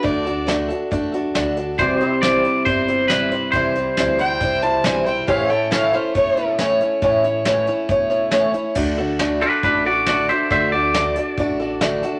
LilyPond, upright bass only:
\new Staff \with { instrumentName = "Upright bass" } { \clef bass \time 4/4 \key d \mixolydian \tempo 4 = 138 d,2 e,4 d,4 | c,2 g,,2 | c,4 d,4 c,4 b,,4 | a,,2 e,,2 |
a,,2 e,,2 | d,2 a,,2 | d,2 a,,2 | }